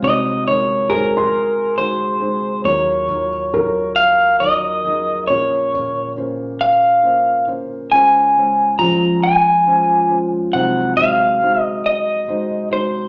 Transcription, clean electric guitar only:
0.04 0.45 D#5 medium
0.48 0.93 C#5 medium
0.90 1.74 A#4 medium
1.78 2.65 C5 medium
2.65 3.95 C#5 medium
3.96 4.40 F5 medium
4.40 5.27 D#5 medium
5.27 6.12 C#5 medium
6.61 7.44 F5 medium
7.92 8.78 G#5 medium
8.79 9.23 A#5 medium
9.23 10.17 G#5 medium
10.53 10.96 F#5 medium
10.97 11.61 F5 medium
11.61 11.86 D#5 medium
11.86 12.68 D#5 medium
12.73 13.08 C5 medium

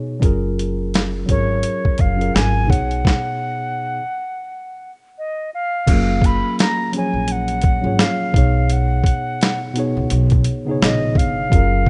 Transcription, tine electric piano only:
0.00 0.25 B2 medium
0.00 0.24 B3 medium
0.00 0.24 D#4 medium
0.00 0.24 G#4 medium
0.00 0.24 C#5 medium
0.20 1.21 F#3 medium
0.20 1.21 C#4 medium
0.20 1.22 F4 medium
0.24 1.23 G#4 medium
0.24 1.23 A#4 medium
1.26 2.11 F#3 medium
1.26 2.12 C#4 medium
1.26 2.12 F4 medium
1.31 2.13 G#4 medium
1.31 2.14 A#4 medium
2.16 2.68 F#3 medium
2.16 2.69 C#4 medium
2.16 2.69 F4 medium
2.20 2.68 G#4 medium
2.20 2.71 A#4 medium
2.65 4.00 B2 medium
2.65 4.01 B3 medium
2.65 4.01 D#4 medium
2.69 4.02 G#4 medium
2.69 4.03 C#5 medium
5.87 6.86 F#3 medium
5.87 6.87 C#4 medium
5.87 6.88 F4 medium
5.91 6.89 A#3 loud
5.91 6.89 G#4 medium
6.92 7.78 F3 medium
6.92 7.76 F#3 medium
6.92 7.77 C#4 medium
6.97 7.79 G#4 medium
6.97 7.79 C#5 medium
7.81 8.33 F#3 medium
7.81 8.33 C#4 medium
7.81 8.34 F4 medium
7.85 8.35 G#4 medium
7.85 8.36 C#5 medium
8.33 9.66 B2 medium
8.33 9.67 B3 medium
8.33 9.67 D#4 medium
8.37 9.68 G#4 medium
8.37 9.69 C#5 medium
9.74 10.58 B2 medium
9.74 10.59 B3 medium
9.74 10.60 D#4 medium
9.78 10.60 G#4 medium
9.78 10.61 C#5 loud
10.65 11.46 C#3 medium
10.65 11.47 B3 medium
10.65 11.48 D#4 medium
10.65 11.48 G#4 medium
10.71 11.49 C#5 medium
11.49 11.90 F#3 medium
11.49 11.90 C#4 medium
11.49 11.90 F4 medium
11.49 11.90 G#4 medium
11.55 11.90 A#4 loud

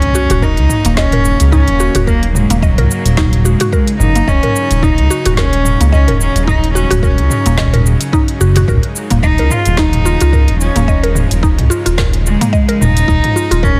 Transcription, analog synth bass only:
0.30 0.59 D#1 medium
0.57 0.67 C#2 medium
0.85 1.35 D#1 loud
1.40 1.69 C#2 medium
1.68 1.89 D#1 medium
1.95 2.45 D#1 loud
2.50 2.79 D#1 medium
2.78 2.87 C#2 loud
3.05 3.55 D#1 loud
4.00 4.23 F#1 loud
4.28 4.40 D#1 medium
4.71 5.00 D#1 medium
4.98 5.08 C#2 medium
5.26 5.76 D#1 loud
5.80 6.09 C#2 loud
6.08 6.29 D#1 medium
6.35 6.85 D#1 medium
6.91 7.20 D#1 medium
7.19 7.28 C#2 medium
7.46 7.96 D#1 loud
8.40 8.63 F#1 loud
8.68 8.80 D#1 loud
9.11 9.40 D#1 medium
9.39 9.48 C#2 medium
9.66 10.16 D#1 loud
10.21 10.50 C#2 loud
10.48 10.70 D#1 medium
10.76 11.26 D#1 loud
11.31 11.61 D#1 loud
11.59 11.68 C#2 medium
11.86 12.36 D#1 loud
12.81 13.04 D#1 loud
13.08 13.21 D#1 loud
13.51 13.80 D#1 loud

